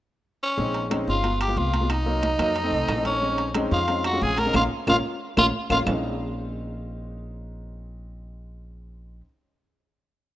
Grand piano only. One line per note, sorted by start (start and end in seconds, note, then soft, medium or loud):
0.57 0.81 G#3 medium
0.57 0.81 C4 medium
0.57 0.81 C#4 medium
0.57 0.81 D#4 medium
0.90 1.14 G#3 medium
0.90 1.14 C4 medium
0.90 1.14 C#4 medium
0.90 1.14 D#4 medium
1.23 1.41 G#3 medium
1.23 1.41 B3 medium
1.23 1.42 F4 medium
1.48 1.71 G#3 medium
1.48 1.72 B3 medium
1.48 1.72 F4 medium
1.81 1.89 G#3 medium
1.81 1.90 B3 medium
1.81 1.90 F4 medium
2.05 2.29 F#3 medium
2.05 2.29 A#3 medium
2.05 2.30 D#4 medium
2.39 2.56 F#3 medium
2.39 2.56 A#3 medium
2.39 2.56 D#4 medium
2.63 2.87 A3 medium
2.63 2.87 C4 medium
2.63 2.87 D#4 medium
2.97 3.14 A3 medium
2.97 3.14 C4 medium
2.97 3.15 D#4 medium
3.21 3.45 G#3 medium
3.21 3.45 C4 medium
3.21 3.45 C#4 medium
3.21 3.46 D#4 medium
3.55 3.78 G#3 medium
3.55 3.78 C4 medium
3.55 3.78 C#4 medium
3.55 3.79 D#4 loud
3.88 4.05 G#3 medium
3.88 4.05 C4 medium
3.88 4.06 C#4 medium
3.88 4.06 D#4 medium
4.12 4.36 G#3 medium
4.12 4.36 C4 medium
4.12 4.36 C#4 medium
4.12 4.37 F4 medium
4.45 4.54 G#3 medium
4.45 4.54 C4 medium
4.45 4.53 C#4 medium
4.45 4.55 D#4 medium
4.54 4.65 A#3 medium
4.54 4.65 C#4 medium
4.54 4.65 F4 medium
4.87 4.98 A#3 medium
4.87 4.98 C#4 medium
4.87 4.98 F4 medium
5.37 5.47 A#3 medium
5.37 5.48 C#4 medium
5.37 5.48 F4 medium
5.70 5.81 A#3 medium
5.70 5.81 C#4 medium
5.70 5.81 F4 medium
5.84 9.18 G#3 medium
5.84 9.20 C4 medium
5.88 9.22 C#4 medium
5.88 9.24 D#4 medium